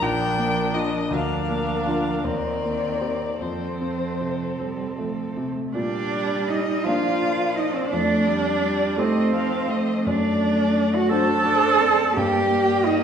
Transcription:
0.00 1.08 A#1 medium
0.00 1.09 F3 medium
0.00 1.10 D4 medium
0.00 1.09 A#4 soft
0.00 0.75 G5 medium
0.37 0.96 A#3 soft
0.73 1.07 D4 soft
0.73 1.07 F4 soft
0.73 1.14 D#5 medium
1.10 2.21 D2 medium
1.10 2.22 F3 soft
1.10 2.25 D4 soft
1.10 2.23 A#4 soft
1.10 2.26 F5 medium
1.48 2.10 A#3 soft
1.86 2.21 D4 soft
1.86 2.21 F4 soft
2.24 3.37 D#2 soft
2.24 3.39 D#3 soft
2.24 3.40 C4 soft
2.24 3.39 A#4 soft
2.24 3.42 D5 medium
2.64 3.25 A#3 soft
3.01 3.37 C4 soft
3.01 3.37 G4 soft
3.41 5.70 F2 soft
3.41 4.48 F3 soft
3.41 5.49 C4 soft
3.41 5.50 A4 soft
3.41 4.58 C5 soft
3.80 4.43 C4 soft
4.21 4.82 C3 soft
4.58 5.00 G3 soft
4.58 5.21 C4 soft
4.98 5.40 F3 soft
4.98 5.60 A3 soft
5.37 5.74 C3 soft
5.37 5.75 A3 soft
5.75 6.82 A#2 medium
5.75 6.86 G3 medium
5.75 6.49 D4 medium
5.75 8.94 D5 medium
5.75 6.51 D5 medium
6.48 6.85 D#4 medium
6.48 6.88 D#5 medium
6.83 7.90 F3 soft
6.83 7.88 A#3 soft
6.83 7.88 D4 soft
6.83 7.57 F4 medium
6.83 7.89 A#4 soft
6.83 7.59 F5 medium
7.56 7.76 D#4 medium
7.56 7.78 D#5 medium
7.75 7.89 C4 medium
7.75 7.96 C5 medium
7.90 8.95 F2 medium
7.90 8.28 A3 medium
7.90 9.00 D4 medium
7.94 9.02 D5 medium
8.26 8.62 G3 medium
8.63 8.98 G3 medium
8.96 9.34 A3 medium
8.96 10.02 A3 soft
8.96 10.06 C4 medium
8.96 10.02 D#4 soft
8.96 10.03 G4 soft
8.96 9.32 D#5 medium
9.00 10.08 C5 medium
9.33 9.70 F3 medium
9.33 9.72 F5 medium
9.69 11.13 A3 medium
9.69 10.07 D#5 medium
10.06 11.08 F#2 soft
10.06 10.97 D4 medium
10.06 11.10 D5 medium
10.06 10.94 D5 medium
10.95 11.11 F#4 medium
10.95 11.11 F#5 medium
11.09 11.46 F#3 medium
11.09 12.12 A3 soft
11.09 12.12 D4 soft
11.09 12.15 A4 medium
11.09 11.44 C5 medium
11.09 12.13 C5 soft
11.09 12.19 A5 medium
11.44 11.81 D4 medium
11.44 11.83 C5 medium
11.79 12.14 C4 medium
11.79 12.16 D5 medium
12.15 13.04 G2 medium
12.15 13.04 A#3 medium
12.15 12.86 G4 medium
12.15 13.04 D5 medium
12.15 12.89 G5 medium
12.85 13.04 D#4 medium
12.85 13.04 D#5 medium

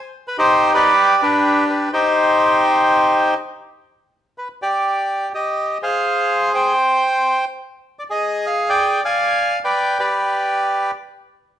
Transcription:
0.28 0.37 B4 loud
0.38 0.93 D#4 medium
0.38 0.73 G4 medium
0.38 0.71 C5 loud
0.74 1.21 G4 medium
0.74 1.21 B4 medium
0.74 1.23 D5 loud
1.22 1.89 D4 medium
1.22 1.89 G4 medium
1.22 1.66 B4 loud
1.70 1.91 B4 medium
1.93 3.35 D#4 medium
1.93 3.34 G4 medium
1.93 3.34 C5 loud
4.38 4.48 B4 medium
4.62 5.32 G4 medium
4.62 5.29 D5 medium
5.34 5.78 G4 medium
5.34 5.78 D#5 medium
5.83 6.73 G#4 medium
5.83 6.53 C5 medium
5.83 6.50 F5 medium
6.54 7.45 C5 medium
6.54 7.45 G5 loud
7.99 8.04 D5 medium
8.10 9.00 G#4 medium
8.10 8.46 D#5 medium
8.47 8.69 F5 medium
8.69 9.03 D5 medium
8.69 9.02 G5 loud
9.05 9.59 D5 medium
9.05 9.59 F5 medium
9.05 9.59 G#5 loud
9.64 9.98 B4 medium
9.64 9.98 D5 medium
9.64 10.00 G5 loud
10.00 10.91 G4 medium
10.00 10.91 B4 medium
10.00 10.91 D5 medium

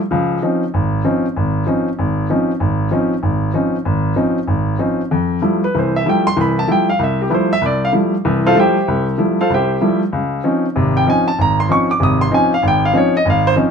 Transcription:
0.11 0.37 C#2 medium
0.11 0.37 F3 medium
0.42 0.62 F3 soft
0.42 0.63 C4 soft
0.42 0.63 C#4 soft
0.42 0.63 D#4 medium
0.74 1.00 G#1 medium
1.04 1.25 F3 medium
1.04 1.25 C4 soft
1.04 1.25 C#4 soft
1.04 1.25 D#4 medium
1.36 1.63 G#1 medium
1.66 1.87 F3 soft
1.66 1.87 C4 soft
1.66 1.88 C#4 soft
1.66 1.88 D#4 medium
1.99 2.25 G#1 medium
2.30 2.50 F3 medium
2.30 2.50 C4 soft
2.30 2.51 C#4 soft
2.30 2.51 D#4 medium
2.60 2.87 G#1 medium
2.91 3.12 F3 medium
2.91 3.13 C4 soft
2.91 3.13 C#4 soft
2.91 3.13 D#4 medium
3.23 3.50 G#1 medium
3.54 3.75 F3 soft
3.54 3.75 C4 soft
3.54 3.75 C#4 soft
3.54 3.75 D#4 medium
3.85 4.12 G#1 medium
4.16 4.37 F3 medium
4.16 4.38 C4 soft
4.16 4.38 C#4 soft
4.16 4.38 D#4 medium
4.48 4.75 G#1 medium
4.79 5.00 F3 soft
4.79 5.00 C4 soft
4.79 5.00 C#4 soft
4.79 5.01 D#4 medium
5.11 5.38 F2 medium
5.42 5.63 F3 medium
5.42 5.63 G3 soft
5.42 5.63 A3 soft
5.42 5.63 E4 medium
5.64 5.74 B4 medium
5.74 6.01 C2 medium
5.74 6.01 E3 medium
5.79 5.95 C5 medium
5.96 6.06 E5 medium
6.06 6.26 F3 medium
6.06 6.26 G3 medium
6.06 6.26 A3 medium
6.06 6.27 E4 medium
6.06 6.26 G5 medium
6.27 6.37 C6 loud
6.36 6.63 C2 medium
6.36 6.63 E3 medium
6.41 6.58 B5 medium
6.59 6.69 A5 medium
6.67 6.88 F3 medium
6.67 6.89 G3 soft
6.67 6.89 A3 soft
6.67 6.89 E4 medium
6.72 6.89 G5 medium
6.89 6.99 F5 medium
6.99 7.26 C2 medium
7.04 7.20 E5 medium
7.22 7.31 G4 medium
7.30 7.51 F3 medium
7.30 7.51 G3 medium
7.30 7.51 A3 soft
7.30 7.51 E4 medium
7.30 7.32 B4 medium
7.34 7.51 C5 medium
7.53 7.62 E5 loud
7.61 7.88 C2 medium
7.66 7.83 D5 medium
7.85 7.90 F5 medium
7.92 8.13 F3 medium
7.92 8.14 G3 soft
7.92 8.14 A3 soft
7.92 8.14 E4 medium
8.25 8.51 C2 medium
8.25 8.51 E3 medium
8.46 8.56 F4 medium
8.46 8.56 A4 medium
8.46 8.56 C5 medium
8.46 8.56 F5 medium
8.55 8.76 F3 medium
8.55 8.76 G3 soft
8.55 8.77 A3 medium
8.55 8.77 E4 medium
8.59 9.05 G4 medium
8.59 9.05 C5 medium
8.59 9.05 E5 medium
8.59 9.05 G5 medium
8.88 9.14 C2 medium
9.18 9.39 F3 medium
9.18 9.39 G3 soft
9.18 9.39 A3 soft
9.18 9.39 E4 medium
9.41 9.50 F4 medium
9.41 9.50 A4 medium
9.41 9.51 C5 medium
9.41 9.50 F5 medium
9.50 9.76 C2 medium
9.54 9.99 G4 medium
9.54 9.99 C5 medium
9.54 9.99 E5 medium
9.54 9.99 G5 medium
9.81 10.02 F3 medium
9.81 10.02 G3 medium
9.81 10.02 A3 soft
9.81 10.02 E4 medium
10.12 10.39 C#2 medium
10.44 10.64 F3 medium
10.44 10.64 C4 medium
10.44 10.65 C#4 soft
10.44 10.65 D#4 medium
10.76 11.02 G#1 medium
10.76 11.02 C3 medium
10.97 11.07 G5 medium
11.07 11.27 F3 medium
11.07 11.27 C4 soft
11.07 11.28 C#4 soft
11.07 11.28 D#4 medium
11.07 11.27 G#5 medium
11.28 11.38 A5 medium
11.39 11.65 G#1 medium
11.39 11.58 A#5 medium
11.60 11.69 C6 medium
11.69 11.89 F3 medium
11.69 11.89 C4 soft
11.69 11.90 C#4 soft
11.69 11.90 D#4 medium
11.69 11.89 C#6 medium
11.91 12.01 D6 medium
12.00 12.27 G#1 medium
12.00 12.27 C3 medium
12.00 12.21 D#6 medium
12.21 12.31 C6 medium
12.32 12.52 F3 medium
12.32 12.52 C4 medium
12.32 12.52 C#4 medium
12.32 12.52 D#4 medium
12.32 12.52 G#5 medium
12.54 12.63 F5 medium
12.63 12.89 G#1 medium
12.68 12.84 G5 medium
12.85 12.95 F5 medium
12.93 13.14 F3 medium
12.93 13.14 C4 soft
12.93 13.14 C#4 medium
12.93 13.15 D#4 medium
12.97 13.15 C#5 medium
13.17 13.26 D#5 medium
13.25 13.52 G#1 medium
13.30 13.47 F5 medium
13.47 13.53 C5 loud
13.56 13.71 F3 medium
13.56 13.71 C4 soft
13.56 13.71 C#4 medium
13.56 13.71 D#4 medium

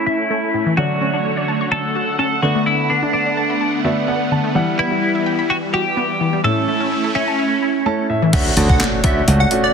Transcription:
0.00 0.73 A3 medium
0.00 2.39 A3 medium
0.00 0.74 C#4 medium
0.00 0.75 C#4 medium
0.00 0.74 E4 medium
0.00 0.75 E4 medium
0.06 0.73 E4 medium
0.06 0.15 E4 medium
0.30 0.39 A3 medium
0.54 0.63 A2 medium
0.66 0.74 E3 medium
0.77 2.41 D3 medium
0.77 0.86 D3 medium
0.77 2.39 F#3 medium
0.77 2.39 C#4 medium
0.77 2.40 D4 medium
0.77 1.71 F#4 medium
0.77 2.41 C#5 medium
0.77 6.40 F#5 medium
1.01 1.10 C#4 medium
1.13 1.21 D4 medium
1.37 1.45 D5 medium
1.48 1.57 A5 loud
1.61 1.69 C#6 medium
1.72 2.16 A4 medium
1.72 1.81 A5 medium
1.96 2.04 F#4 medium
2.19 2.28 C#4 medium
2.19 2.42 A4 medium
2.42 3.81 D3 medium
2.42 2.51 D3 medium
2.42 4.53 D3 medium
2.42 3.81 A3 medium
2.42 4.53 A3 medium
2.42 3.82 B3 medium
2.42 6.40 B3 medium
2.42 3.82 D4 medium
2.42 2.66 F#4 medium
2.55 2.63 A3 medium
2.66 2.75 D3 medium
2.66 2.91 E4 medium
2.90 2.99 B3 medium
2.90 3.12 D4 medium
3.03 3.10 D4 medium
3.13 3.80 D4 medium
3.26 3.34 D5 medium
3.37 3.46 A5 loud
3.50 3.57 B5 medium
3.61 3.70 A5 medium
3.84 4.55 D3 medium
3.84 4.55 A3 medium
3.84 4.55 B3 medium
3.84 4.55 D4 medium
3.84 3.93 F#4 medium
3.84 4.06 E5 medium
4.08 4.17 B3 medium
4.08 4.30 F#5 medium
4.31 4.40 D3 medium
4.31 4.54 A5 medium
4.44 4.52 A3 medium
4.55 4.64 E3 medium
4.55 6.42 E3 medium
4.55 6.40 G3 medium
4.55 6.42 G3 medium
4.55 6.41 E4 medium
4.55 6.41 F#5 medium
4.79 4.88 B3 medium
4.79 5.52 E4 medium
4.92 4.99 E4 medium
5.15 5.23 E5 medium
5.26 5.35 G5 medium
5.39 5.46 B5 medium
5.50 5.56 F#4 medium
5.50 5.58 G5 medium
5.73 5.82 F#4 medium
5.73 6.40 G4 medium
5.97 6.06 B3 medium
6.21 6.29 E3 medium
6.33 6.41 G3 medium
6.44 6.53 A2 medium
6.44 7.83 A3 medium
6.44 8.31 A3 medium
6.44 8.31 C#4 medium
6.44 7.83 C#4 medium
6.44 8.31 E4 medium
6.44 7.83 E4 medium
6.44 7.11 A4 loud
6.68 6.77 A3 medium
6.80 6.88 C#4 medium
7.04 7.12 A4 medium
7.15 8.06 C#4 medium
7.15 7.24 E5 loud
7.28 7.35 A5 medium
7.39 7.48 E5 medium
7.62 7.71 E4 medium
7.86 8.31 A3 medium
7.86 7.95 A3 medium
7.86 8.32 C#4 medium
7.86 8.33 E4 medium
7.86 8.08 A5 medium
8.10 8.18 A2 medium
8.10 8.32 E5 medium
8.22 8.30 E3 medium
8.33 8.49 D2 loud
8.33 8.52 A3 loud
8.33 8.52 C#4 loud
8.33 8.52 D4 medium
8.33 8.52 F#4 loud
8.33 8.44 E5 loud
8.33 kick loud
8.33 closed hi-hat loud
8.33 crash loud
8.33 impact medium
8.56 8.81 D2 loud
8.56 8.75 A3 medium
8.56 8.75 C#4 medium
8.56 8.75 D4 medium
8.56 8.75 F#4 medium
8.56 closed hi-hat medium
8.69 8.79 F#5 medium
8.69 kick loud
8.80 8.99 A3 medium
8.80 8.99 C#4 medium
8.80 8.99 D4 medium
8.80 8.99 F#4 medium
8.80 snare medium
8.80 clap loud
8.80 closed hi-hat medium
9.04 9.20 D2 medium
9.04 9.22 A3 loud
9.04 9.22 C#4 medium
9.04 9.23 D4 medium
9.04 9.23 F#4 loud
9.04 9.24 E5 medium
9.04 kick loud
9.04 closed hi-hat medium
9.27 9.44 C#2 loud
9.27 9.46 A3 medium
9.27 9.46 C#4 medium
9.27 9.46 D4 medium
9.27 9.46 F#4 medium
9.27 closed hi-hat loud
9.40 9.50 F#5 medium
9.51 9.70 A3 medium
9.51 9.70 C#4 medium
9.51 9.70 D4 medium
9.51 9.70 F#4 medium
9.51 closed hi-hat medium
9.64 9.73 D5 medium

